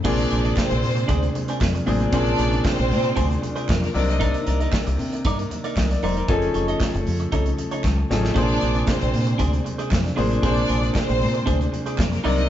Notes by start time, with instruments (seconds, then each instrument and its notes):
0.04 fingered electric bass A#1, grand piano A#2 A#3 C4 D4 G#4, tonewheel organ C3 G#3 D4, clean electric guitar D4 G#4 C5, string section D4 D5, kick, crash, muted conga
0.18 closed hi-hat
0.30 fingered electric bass A#1, clean electric guitar D4 G#4 C5, closed hi-hat, muted conga
0.44 clean electric guitar D4 G#4 D5, closed hi-hat
0.56 string section C4 C5, muted clean electric guitar stroke, kick, snare, clap, high conga
0.70 fingered electric bass A#1, muted clean electric guitar stroke, closed hi-hat
0.82 fingered electric bass A#2, open hi-hat, low conga
0.96 muted clean electric guitar stroke, closed hi-hat
1.08 fingered electric bass D2, clean electric guitar D4 G#4 C5, kick, closed hi-hat, muted conga
1.22 muted clean electric guitar stroke, closed hi-hat
1.35 muted clean electric guitar stroke, closed hi-hat, muted conga, low conga
1.48 clean electric guitar D4 G#4 C5, closed hi-hat
1.60 fingered electric bass F2, muted clean electric guitar stroke, kick, snare, clap, high conga
1.75 muted clean electric guitar stroke, closed hi-hat
1.86 fingered electric bass A1, grand piano A#2 A#3 C4 D4 G#4, clean electric guitar D4 G#4 C5, open hi-hat, high conga
2.00 clean electric guitar D4 G#4 C5, closed hi-hat
2.12 fingered electric bass A#1, grand piano A#2 A#3 C4 C#4 G#4, string section D4 D5, clean electric guitar D4 G#4 C5, kick, closed hi-hat
2.20 grand piano D4
2.26 closed hi-hat
2.38 fingered electric bass A#1, clean electric guitar D4 G#4 C5, closed hi-hat, muted conga
2.52 clean electric guitar D4 G#4 D5, closed hi-hat
2.65 string section C4 C5, muted clean electric guitar stroke, kick, snare, clap, high conga
2.78 fingered electric bass A#1, muted clean electric guitar stroke, closed hi-hat
2.90 fingered electric bass A#2, open hi-hat, low conga
3.04 muted clean electric guitar stroke, closed hi-hat
3.16 fingered electric bass D2, clean electric guitar D4 G#4 C5, kick, closed hi-hat, muted conga
3.30 muted clean electric guitar stroke, closed hi-hat
3.42 muted clean electric guitar stroke, closed hi-hat, muted conga, low conga
3.56 clean electric guitar D4 G#4 C5, closed hi-hat
3.68 fingered electric bass F2, string section A#3 A#4, muted clean electric guitar stroke, kick, snare, clap, high conga
3.82 string section A#3 A#4, muted clean electric guitar stroke, snare, closed hi-hat
3.94 fingered electric bass C2, grand piano C3 C4 D4 D#4 A#4, tonewheel organ D#3 A#3, string section D4 D5, open hi-hat, high conga
4.08 string section D#4 D#5, muted clean electric guitar stroke, closed hi-hat
4.20 clean electric guitar D#4 A#4 D5, kick, closed hi-hat
4.34 closed hi-hat
4.46 fingered electric bass C2, clean electric guitar D#4 A#4 D5, closed hi-hat, muted conga
4.60 clean electric guitar D#4 A#4 D#5, closed hi-hat
4.72 muted clean electric guitar stroke, kick, snare, clap, high conga
4.87 fingered electric bass C2, muted clean electric guitar stroke, closed hi-hat
4.98 fingered electric bass C3, open hi-hat, low conga
5.12 muted clean electric guitar stroke, closed hi-hat
5.25 fingered electric bass G2, clean electric guitar D#4 A#4 D5, kick, closed hi-hat, muted conga
5.39 muted clean electric guitar stroke, closed hi-hat
5.51 muted clean electric guitar stroke, closed hi-hat, muted conga, low conga
5.64 clean electric guitar D#4 A#4 D5, closed hi-hat
5.76 fingered electric bass C2, grand piano D#5, muted clean electric guitar stroke, kick, snare, clap, high conga
5.91 grand piano D5, muted clean electric guitar stroke, snare, closed hi-hat
6.02 fingered electric bass E1, clean electric guitar D#4 A#4 D5, grand piano C5, open hi-hat, high conga
6.16 clean electric guitar D#4 A#4 D5, grand piano A#4, closed hi-hat
6.28 fingered electric bass F1, tonewheel organ C#3 A3, grand piano F3 C#4 D#4 G#4 A4, clean electric guitar D#4 A4 C#5, kick, closed hi-hat, muted conga
6.42 closed hi-hat
6.54 fingered electric bass F1, clean electric guitar D#4 A4 C#5, closed hi-hat, muted conga
6.68 clean electric guitar D#4 A4 D#5, closed hi-hat
6.80 muted clean electric guitar stroke, kick, snare, clap, high conga
6.94 fingered electric bass F1, muted clean electric guitar stroke, closed hi-hat
7.05 fingered electric bass F2, open hi-hat, low conga
7.20 muted clean electric guitar stroke, closed hi-hat
7.32 fingered electric bass C2, clean electric guitar D#4 A4 C#5, kick, closed hi-hat, muted conga
7.45 muted clean electric guitar stroke, closed hi-hat
7.58 muted clean electric guitar stroke, closed hi-hat, muted conga, low conga
7.71 clean electric guitar D#4 A4 C#5, closed hi-hat
7.83 fingered electric bass C#2, muted clean electric guitar stroke, kick, snare, clap, high conga
7.97 muted clean electric guitar stroke
8.10 fingered electric bass A1, grand piano F3 C#4 D#4 G#4 A4, snare, high conga
8.23 muted clean electric guitar stroke, snare
8.34 fingered electric bass A#1, grand piano A#2 A#3 D4 G#4 C5, tonewheel organ C3 G#3 D4, clean electric guitar D4 G#4 C5, string section D4 D5, kick, closed hi-hat
8.49 closed hi-hat
8.61 fingered electric bass A#1, clean electric guitar D4 G#4 C5, closed hi-hat, muted conga
8.75 clean electric guitar D4 G#4 D5, closed hi-hat
8.87 string section C4 C5, muted clean electric guitar stroke, kick, snare, clap, high conga
9.01 fingered electric bass A#1, muted clean electric guitar stroke, closed hi-hat
9.13 fingered electric bass A#2, open hi-hat, low conga
9.27 muted clean electric guitar stroke, closed hi-hat
9.38 fingered electric bass D2, clean electric guitar D4 G#4 C5, kick, closed hi-hat, muted conga
9.52 muted clean electric guitar stroke, closed hi-hat
9.65 muted clean electric guitar stroke, closed hi-hat, muted conga, low conga
9.78 clean electric guitar D4 G#4 C5, closed hi-hat
9.90 fingered electric bass F2, muted clean electric guitar stroke, kick, snare, clap, high conga
10.04 muted clean electric guitar stroke, snare, closed hi-hat
10.16 fingered electric bass A1, grand piano A#2 A#3 D4 G#4 C5, clean electric guitar D4 G#4 C5, open hi-hat, high conga
10.30 clean electric guitar D4 G#4 C5, closed hi-hat
10.42 fingered electric bass A#1, grand piano A#2 A#3 D4 G#4 C5, tonewheel organ G#3, clean electric guitar D4 G#4 C5, string section D4 D5, kick, closed hi-hat
10.57 closed hi-hat
10.68 fingered electric bass A#1, clean electric guitar D4 G#4 C5, closed hi-hat, muted conga
10.82 clean electric guitar D4 G#4 D5, closed hi-hat
10.94 string section C4 C5, muted clean electric guitar stroke, kick, snare, clap, high conga
11.08 fingered electric bass A#1, muted clean electric guitar stroke, closed hi-hat
11.21 fingered electric bass A#2, open hi-hat, low conga
11.34 muted clean electric guitar stroke, closed hi-hat
11.46 fingered electric bass D2, clean electric guitar D4 G#4 C5, kick, closed hi-hat, muted conga
11.60 muted clean electric guitar stroke, closed hi-hat
11.72 muted clean electric guitar stroke, closed hi-hat, muted conga, low conga
11.86 clean electric guitar D4 G#4 C5, closed hi-hat
11.98 fingered electric bass F2, string section A#3 A#4, kick, snare, clap, high conga
12.12 string section A#3 A#4, muted clean electric guitar stroke, snare, closed hi-hat
12.24 fingered electric bass C2, grand piano C3 C4 D#4 A#4 D5, tonewheel organ D#3 A#3 D#4, string section D4 D5, clean electric guitar D#4 A#4 D5, open hi-hat, high conga
12.37 string section D#4 D#5, muted clean electric guitar stroke, closed hi-hat